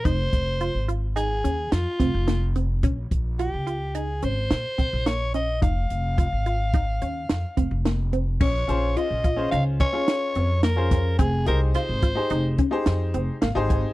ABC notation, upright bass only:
X:1
M:5/4
L:1/16
Q:1/4=108
K:Fm
V:1 name="Upright bass" clef=bass
F,,,2 F,,,3 A,,,4- A,,, E,,2 F,, z F,,, F,,,4- F,,, | B,,,2 B,,,3 D,,4- D,, A,,,2 B,, z B,,, B,,,4- B,,, | F,,,2 F,,,3 A,,,4- A,,, E,,2 F,, z F,,, F,,,4- F,,, | B,,,2 B,,,2 z B,,,3 D,,2 z4 F,,6 |
F,,,2 C,,2 z A,,,2 z F,,,2 z2 F,,2 F,,, z A,,, A,,,2 z |]